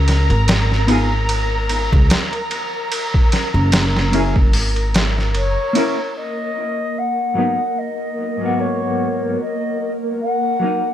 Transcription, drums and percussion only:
0, 0, Header, 1, 2, 480
1, 0, Start_track
1, 0, Key_signature, 5, "minor"
1, 0, Tempo, 810811
1, 1724, Time_signature, 4, 2, 24, 8
1, 6475, End_track
2, 0, Start_track
2, 0, Title_t, "Drums"
2, 46, Note_on_c, 9, 51, 69
2, 53, Note_on_c, 9, 38, 46
2, 105, Note_off_c, 9, 51, 0
2, 112, Note_off_c, 9, 38, 0
2, 178, Note_on_c, 9, 51, 44
2, 238, Note_off_c, 9, 51, 0
2, 284, Note_on_c, 9, 51, 84
2, 291, Note_on_c, 9, 38, 111
2, 343, Note_off_c, 9, 51, 0
2, 350, Note_off_c, 9, 38, 0
2, 424, Note_on_c, 9, 38, 37
2, 483, Note_off_c, 9, 38, 0
2, 522, Note_on_c, 9, 51, 67
2, 582, Note_off_c, 9, 51, 0
2, 763, Note_on_c, 9, 51, 82
2, 822, Note_off_c, 9, 51, 0
2, 1003, Note_on_c, 9, 51, 64
2, 1062, Note_off_c, 9, 51, 0
2, 1139, Note_on_c, 9, 36, 88
2, 1198, Note_off_c, 9, 36, 0
2, 1244, Note_on_c, 9, 51, 90
2, 1251, Note_on_c, 9, 38, 116
2, 1303, Note_off_c, 9, 51, 0
2, 1310, Note_off_c, 9, 38, 0
2, 1379, Note_on_c, 9, 51, 45
2, 1438, Note_off_c, 9, 51, 0
2, 1485, Note_on_c, 9, 51, 63
2, 1544, Note_off_c, 9, 51, 0
2, 1726, Note_on_c, 9, 51, 84
2, 1786, Note_off_c, 9, 51, 0
2, 1861, Note_on_c, 9, 36, 96
2, 1920, Note_off_c, 9, 36, 0
2, 1966, Note_on_c, 9, 51, 73
2, 1973, Note_on_c, 9, 38, 48
2, 2026, Note_off_c, 9, 51, 0
2, 2033, Note_off_c, 9, 38, 0
2, 2204, Note_on_c, 9, 51, 86
2, 2211, Note_on_c, 9, 38, 121
2, 2263, Note_off_c, 9, 51, 0
2, 2270, Note_off_c, 9, 38, 0
2, 2348, Note_on_c, 9, 38, 52
2, 2407, Note_off_c, 9, 38, 0
2, 2446, Note_on_c, 9, 51, 68
2, 2505, Note_off_c, 9, 51, 0
2, 2580, Note_on_c, 9, 36, 96
2, 2639, Note_off_c, 9, 36, 0
2, 2684, Note_on_c, 9, 46, 77
2, 2743, Note_off_c, 9, 46, 0
2, 2820, Note_on_c, 9, 51, 39
2, 2879, Note_off_c, 9, 51, 0
2, 2927, Note_on_c, 9, 51, 71
2, 2934, Note_on_c, 9, 38, 101
2, 2986, Note_off_c, 9, 51, 0
2, 2993, Note_off_c, 9, 38, 0
2, 3068, Note_on_c, 9, 38, 32
2, 3128, Note_off_c, 9, 38, 0
2, 3165, Note_on_c, 9, 51, 63
2, 3224, Note_off_c, 9, 51, 0
2, 3406, Note_on_c, 9, 51, 78
2, 3465, Note_off_c, 9, 51, 0
2, 6475, End_track
0, 0, End_of_file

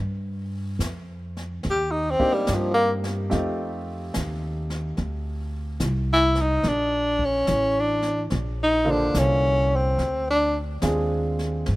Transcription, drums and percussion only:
0, 0, Header, 1, 2, 480
1, 0, Start_track
1, 0, Key_signature, -2, "major"
1, 0, Tempo, 835655
1, 1901, Time_signature, 4, 2, 24, 8
1, 6756, End_track
2, 0, Start_track
2, 0, Title_t, "Drums"
2, 460, Note_on_c, 9, 38, 60
2, 460, Note_on_c, 9, 44, 63
2, 518, Note_off_c, 9, 38, 0
2, 518, Note_off_c, 9, 44, 0
2, 785, Note_on_c, 9, 38, 31
2, 842, Note_off_c, 9, 38, 0
2, 937, Note_on_c, 9, 25, 42
2, 937, Note_on_c, 9, 38, 44
2, 995, Note_off_c, 9, 38, 0
2, 1263, Note_on_c, 9, 36, 55
2, 1320, Note_off_c, 9, 36, 0
2, 1418, Note_on_c, 9, 38, 60
2, 1418, Note_on_c, 9, 44, 52
2, 1475, Note_off_c, 9, 38, 0
2, 1475, Note_off_c, 9, 44, 0
2, 1745, Note_on_c, 9, 38, 39
2, 1802, Note_off_c, 9, 38, 0
2, 1901, Note_off_c, 9, 25, 0
2, 1901, Note_on_c, 9, 25, 44
2, 1901, Note_on_c, 9, 38, 43
2, 1959, Note_off_c, 9, 38, 0
2, 2378, Note_on_c, 9, 38, 62
2, 2378, Note_on_c, 9, 44, 58
2, 2435, Note_off_c, 9, 38, 0
2, 2435, Note_off_c, 9, 44, 0
2, 2700, Note_on_c, 9, 38, 34
2, 2757, Note_off_c, 9, 38, 0
2, 2855, Note_off_c, 9, 25, 0
2, 2855, Note_on_c, 9, 25, 50
2, 2855, Note_on_c, 9, 38, 42
2, 2912, Note_off_c, 9, 38, 0
2, 3330, Note_on_c, 9, 38, 63
2, 3330, Note_on_c, 9, 44, 59
2, 3388, Note_off_c, 9, 38, 0
2, 3388, Note_off_c, 9, 44, 0
2, 3647, Note_on_c, 9, 38, 38
2, 3705, Note_off_c, 9, 38, 0
2, 3809, Note_off_c, 9, 25, 0
2, 3809, Note_on_c, 9, 25, 44
2, 3809, Note_on_c, 9, 38, 44
2, 3866, Note_off_c, 9, 38, 0
2, 4131, Note_on_c, 9, 36, 42
2, 4188, Note_off_c, 9, 36, 0
2, 4290, Note_on_c, 9, 38, 66
2, 4290, Note_on_c, 9, 44, 63
2, 4348, Note_off_c, 9, 38, 0
2, 4348, Note_off_c, 9, 44, 0
2, 4608, Note_on_c, 9, 38, 36
2, 4665, Note_off_c, 9, 38, 0
2, 4769, Note_off_c, 9, 25, 0
2, 4769, Note_on_c, 9, 25, 44
2, 4769, Note_on_c, 9, 38, 45
2, 4826, Note_off_c, 9, 38, 0
2, 5252, Note_on_c, 9, 38, 64
2, 5252, Note_on_c, 9, 44, 59
2, 5310, Note_off_c, 9, 38, 0
2, 5310, Note_off_c, 9, 44, 0
2, 5737, Note_off_c, 9, 25, 0
2, 5737, Note_on_c, 9, 25, 53
2, 5737, Note_on_c, 9, 38, 46
2, 5794, Note_off_c, 9, 38, 0
2, 6213, Note_on_c, 9, 38, 62
2, 6213, Note_on_c, 9, 44, 54
2, 6270, Note_off_c, 9, 38, 0
2, 6270, Note_off_c, 9, 44, 0
2, 6542, Note_on_c, 9, 38, 39
2, 6599, Note_off_c, 9, 38, 0
2, 6698, Note_off_c, 9, 25, 0
2, 6698, Note_on_c, 9, 25, 51
2, 6698, Note_on_c, 9, 38, 45
2, 6756, Note_off_c, 9, 25, 0
2, 6756, Note_off_c, 9, 38, 0
2, 6756, End_track
0, 0, End_of_file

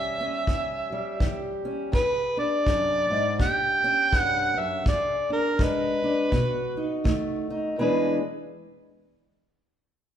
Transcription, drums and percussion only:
0, 0, Header, 1, 2, 480
1, 0, Start_track
1, 0, Tempo, 729927
1, 1272, Time_signature, 4, 2, 24, 8
1, 6685, End_track
2, 0, Start_track
2, 0, Title_t, "Drums"
2, 311, Note_on_c, 9, 36, 58
2, 377, Note_off_c, 9, 36, 0
2, 792, Note_on_c, 9, 36, 65
2, 857, Note_off_c, 9, 36, 0
2, 1272, Note_on_c, 9, 36, 67
2, 1338, Note_off_c, 9, 36, 0
2, 1752, Note_on_c, 9, 36, 61
2, 1818, Note_off_c, 9, 36, 0
2, 2233, Note_on_c, 9, 36, 63
2, 2299, Note_off_c, 9, 36, 0
2, 2713, Note_on_c, 9, 36, 69
2, 2779, Note_off_c, 9, 36, 0
2, 3196, Note_on_c, 9, 36, 72
2, 3261, Note_off_c, 9, 36, 0
2, 3677, Note_on_c, 9, 36, 66
2, 3743, Note_off_c, 9, 36, 0
2, 4157, Note_on_c, 9, 36, 57
2, 4222, Note_off_c, 9, 36, 0
2, 4638, Note_on_c, 9, 36, 64
2, 4704, Note_off_c, 9, 36, 0
2, 6685, End_track
0, 0, End_of_file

